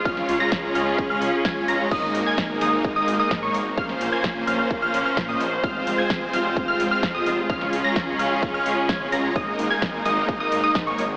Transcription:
<<
  \new Staff \with { instrumentName = "Synth pluck" } { \time 4/4 \key aes \major \tempo 4 = 129 f'''8. bes'''8. f'''8. f'''8 r16 aes'''8 bes'''8 | ees'''8. aes'''8. ees'''8. ees'''8 ees'''8 des'''16 r8 | f'''8. aes'''8. f'''8. f'''8 f'''8 ees'''16 r8 | f'''8. aes'''8. f'''8. f'''8 f'''8 ees'''16 r8 |
f'''8. bes'''8. f'''8. f'''8 r16 aes'''8 bes'''8 | ees'''8. aes'''8. ees'''8. ees'''8 ees'''8 des'''16 r8 | }
  \new Staff \with { instrumentName = "Supersaw synth" } { \time 4/4 \key aes \major <aes des' f' des'' f''>8. <aes des' f' des'' bes''>8. <aes des' f' des'' f''>8. <aes des' f' des'' f''>8 r16 <aes des' f' des'' aes''>8 <aes des' f' des'' bes''>8 | <aes bes ees' bes'>8. <aes bes ees' bes' aes''>8. <aes bes ees' bes' ees''>8. <aes bes ees' bes' ees''>8 <aes bes ees' bes' ees''>8 <aes bes ees' bes' des''>16 r8 | <bes des' f' c'' f''>8. <bes des' f' c'' aes''>8. <bes des' f' c'' f''>8. <bes des' f' c'' f''>8 <bes des' f' c'' f''>8 <bes des' f' c'' ees''>16 r8 | <aes c' f' c'' f''>8. <aes c' f' c'' aes''>8. <aes c' f' c'' f''>8. <aes c' f' c'' f''>8 <aes c' f' c'' f''>8 <aes c' f' c'' ees''>16 r8 |
<aes des' f' des'' f''>8. <aes des' f' des'' bes''>8. <aes des' f' des'' f''>8. <aes des' f' des'' f''>8 r16 <aes des' f' des'' aes''>8 <aes des' f' des'' bes''>8 | <aes bes ees' bes' ees''>8. <aes bes ees' bes' aes''>8. <aes bes ees' bes' ees''>8. <aes bes ees' bes' ees''>8 <aes bes ees' bes' ees''>8 <aes bes ees' bes' des''>16 r8 | }
  \new Staff \with { instrumentName = "String section" } { \time 4/4 \key aes \major << { <des des' f' aes'>1 | <aes ees'>1 | <bes des'>1 | <aes f'>1 |
<des des' aes'>1 | <aes ees'>1 | } \\ { r1 | bes1 | c''1~ | c''1 |
r1 | bes1 | } >> }
  \new Staff \with { instrumentName = "Detuned saw bass" } { \clef bass \time 4/4 \key aes \major des,8 des,8 des,8 des,8 des,8 des,8 des,8 des,8 | aes,,8 aes,,8 aes,,8 aes,,8 aes,,8 aes,,8 aes,8 aes,,8 | bes,,8 bes,,8 bes,,8 bes,,8 bes,,8 bes,,8 bes,8 bes,,8 | f,,8 f,,8 f,,8 f,,8 f,,8 f,,8 f,8 f,,8 |
des,8 des,8 des,8 des,8 des,8 des,8 aes,,8 des,8 | aes,,8 aes,,8 aes,,8 aes,,8 aes,,8 aes,,8 aes,8 aes,,8 | }
  \new DrumStaff \with { instrumentName = "Drums" } \drummode { \time 4/4 <bd cymr>16 sn16 <hho cymr>8 <bd cymr sn>8 <hho cymr>8 <bd cymr>8 <hho cymr>8 <bd cymr sn>8 <hho cymr>8 | <cymc bd cymr>8 <hho cymr>8 <bd cymr sn>8 <hho cymr sn>8 <bd cymr>8 <hho cymr>8 <bd cymr sn>8 <hho cymr>8 | <bd cymr>16 sn16 <hho cymr>8 <bd cymr sn>8 <hho cymr>8 <bd cymr>8 <hho cymr>8 <bd cymr sn>8 <hho cymr>8 | <bd cymr>8 <hho cymr>8 <bd cymr sn>8 <hho cymr sn>8 <bd cymr>8 <hho cymr>8 <bd cymr sn>8 <hho cymr>8 |
<bd cymr>16 sn16 <hho cymr>8 <bd cymr sn>8 <hho cymr>8 <bd cymr>8 <hho cymr>8 <bd cymr sn>8 <hho cymr>8 | <bd cymr>8 <hho cymr>8 <bd cymr sn>8 <hho cymr sn>8 <bd cymr>8 <hho cymr>8 <bd cymr sn>8 <hho cymr>8 | }
>>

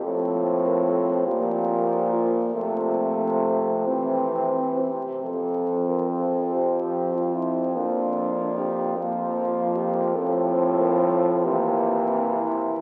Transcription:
<<
  \new Staff \with { instrumentName = "French horn" } { \time 6/8 \key f \major \tempo 4. = 47 a'8. bes'16 a'8 g'4 f'8 | c'2~ c'8 g'8 | a'8. bes'16 a'8 g'8. f'16 e'8 | d'4 g'8 f'4 g'8 |
a'8. bes'16 a'8 g'4 e'8 | }
  \new Staff \with { instrumentName = "French horn" } { \time 6/8 \key f \major c'4. bes4. | a4. c'4 r8 | c'2. | bes4. bes4. |
c'4. bes4. | }
  \new Staff \with { instrumentName = "French horn" } { \clef bass \time 6/8 \key f \major f4. f4. | f4. e4 r8 | f2. | f4. f4. |
f4. e4. | }
  \new Staff \with { instrumentName = "French horn" } { \clef bass \time 6/8 \key f \major a,4. bes,4. | c4. c4 r8 | f,2.~ | f,2. |
a,4. c4. | }
>>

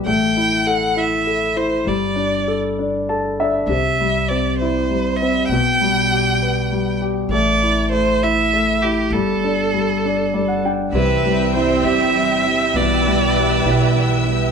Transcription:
<<
  \new Staff \with { instrumentName = "String section" } { \time 6/8 \key c \lydian \tempo 4. = 66 << { r2. | r2. | r2. | r2. |
r2. | r2. | e'''2.~ | e'''2. | } \\ { r2. | r2. | r2. | r2. |
r2. | r2. | <c' e'' g''>2. | <b' e'' g''>2. | } >> }
  \new Staff \with { instrumentName = "Violin" } { \time 6/8 \key c \lydian g''4 fis''8 e''4 c''8 | d''4 r2 | e''4 d''8 c''4 e''8 | g''2~ g''8 r8 |
d''4 c''8 e''4 g'8 | a'2~ a'8 r8 | b'4 c''8 e''4. | d''2 r4 | }
  \new Staff \with { instrumentName = "Grand piano" } { \time 6/8 \key c \lydian << { r2. | r2 a''8 e''8 | r2. | r2. |
r2. | r2 d''16 fis''16 g''8 | r2. | r2. | } \\ { a8 e'8 a'8 e'8 a'8 e'8 | g8 d'8 a'8 d'8 a'8 d'8 | c8 g8 c'8 e'8 g8 c'8 | b,8 g8 g'8 b'8 g8 g'8 |
a8 e'8 a8 e'8 a8 e'8 | g8 d'8 g8 d'8 g8 d'8 | c8 g8 e'8 g'4. | b,8 g8 g'8 b'4. | } >> }
  \new Staff \with { instrumentName = "Steel-string acoustic guitar" } { \time 6/8 \key c \lydian r2. | r2. | r2. | r2. |
r2. | r2. | <c e g c' e'>8 <g c' e'>8 <e g c' e'>8 <c e g c' e'>8 <e g c' e'>8 <g c' e'>8 | <b, e g b e'>8 <g b e'>8 <e g b e'>8 <b, e g b e'>8 <e g b e'>8 <g b e'>8 | }
  \new Staff \with { instrumentName = "Upright bass" } { \clef bass \time 6/8 \key c \lydian a,,2. | g,,2. | c,2. | b,,2. |
a,,2. | g,,2. | c,4. g,,4. | b,,4. b,,4. | }
>>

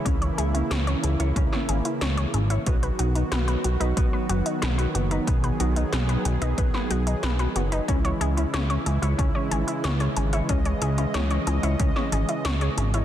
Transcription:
<<
  \new Staff \with { instrumentName = "Synth arpeggio sound" } { \time 4/4 \key cis \minor \tempo 4 = 92 cis'16 cis''16 gis'16 e'16 cis''16 cis''16 gis'16 e'16 cis'16 cis''16 gis'16 e'16 cis''16 cis''16 gis'16 e'16 | b16 b'16 fis'16 dis'16 b'16 b'16 fis'16 dis'16 b16 b'16 fis'16 dis'16 b'16 b'16 fis'16 dis'16 | b16 b'16 fis'16 dis'16 b'16 b'16 fis'16 dis'16 b16 b'16 fis'16 dis'16 b'16 b'16 fis'16 dis'16 | cis'16 cis''16 gis'16 e'16 cis''16 cis''16 gis'16 e'16 cis'16 cis''16 gis'16 e'16 cis''16 cis''16 gis'16 e'16 |
cis'16 cis''16 gis'16 e'16 cis''16 cis''16 gis'16 e'16 cis'16 cis''16 gis'16 e'16 cis''16 cis''16 gis'16 e'16 | }
  \new Staff \with { instrumentName = "Clean electric guitar" } { \time 4/4 \key cis \minor cis'16 r16 e'16 cis'16 cis'16 cis'16 r16 cis''16 cis'16 cis'16 cis'16 r16 cis'16 gis'16 cis'16 cis''16 | b16 r16 dis'16 b16 b16 b16 r16 b'16 b16 b16 b16 r16 b16 fis'16 b16 b'16 | b16 r16 dis'16 b16 b16 b16 r16 b'16 b16 b16 b16 r16 b16 fis'16 b16 b'16 | cis'16 r16 e'16 cis'16 cis'16 cis'16 r16 cis''16 cis'16 cis'16 cis'16 r16 cis'16 gis'16 cis'16 cis''16 |
cis'16 r16 e'16 cis'16 cis'16 cis'16 r16 cis''16 cis'16 cis'16 cis'16 r16 cis'16 gis'16 cis'16 cis''16 | }
  \new Staff \with { instrumentName = "Supersaw synth" } { \clef bass \time 4/4 \key cis \minor << { e'1 | fis'1 | gis'1 | e'1 |
dis''1 | } \\ { <cis e>1 | <dis fis b>1~ | <dis fis b>1 | <cis e gis>1~ |
<cis e gis>1 | } >> }
  \new Staff \with { instrumentName = "Analog synth bass" } { \clef bass \time 4/4 \key cis \minor cis,16 r16 cis,16 r16 cis,16 r16 cis,16 cis,16 cis,16 r16 gis,,16 r16 cis,16 r16 gis,,16 r16 | b,,16 r16 b,,16 r16 b,,16 r16 b,,16 b,,16 b,,16 r16 fis,,16 r16 b,,16 r16 fis,,16 r16 | b,,16 r16 b,,16 r16 b,,16 r16 b,,16 b,,16 b,,16 r16 b,,16 r16 b,,16 r16 fis,,16 r16 | cis,16 r16 cis,16 r16 cis,16 r16 cis,16 cis,16 cis,16 r16 gis,,16 r16 cis,16 r16 gis,,16 r16 |
cis,16 r16 cis,16 r16 cis,16 r16 cis,16 cis,16 cis,16 r16 gis,,16 r16 cis,16 r16 gis,,16 r16 | }
  \new DrumStaff \with { instrumentName = "Drums" } \drummode { \time 4/4 <hh bd>16 hh16 hh16 hh16 <hh sn>16 hh16 hh16 hh16 <hh bd>16 sn16 hh16 hh16 <hh sn>16 hh16 hh16 hh16 | <hh bd>16 hh16 hh16 hh16 <hh sn>16 hh16 hh16 hh16 <hh bd>8 hh16 hh16 <hh sn>16 hh16 hh16 hh16 | <hh bd>16 hh16 hh16 hh16 <hh sn>16 hh16 hh16 hh16 <hh bd>16 sn16 hh16 hh16 <hh sn>16 hh16 hh16 hh16 | <hh bd>16 hh16 hh16 hh16 <hh sn>16 hh16 hh16 hh16 <hh bd>8 hh16 hh16 <hh sn>16 hh16 hh16 hh16 |
<hh bd>16 hh16 hh16 hh16 <hh sn>16 hh16 hh16 hh16 <hh bd>16 sn16 hh16 hh16 <hh sn>16 hh16 hh16 hh16 | }
>>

